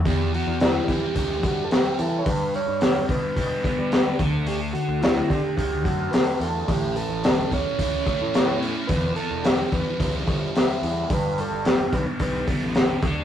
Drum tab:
HH |oooooooo|oooooooo|oooooooo|oooooooo|
SD |--o---o-|--o---o-|--o---o-|--o---o-|
BD |o--ooo--|o--ooo-o|---ooo--|o--ooo--|

HH |oooooooo|oooooooo|
SD |--o---o-|--o---o-|
BD |o--ooo--|o--ooo-o|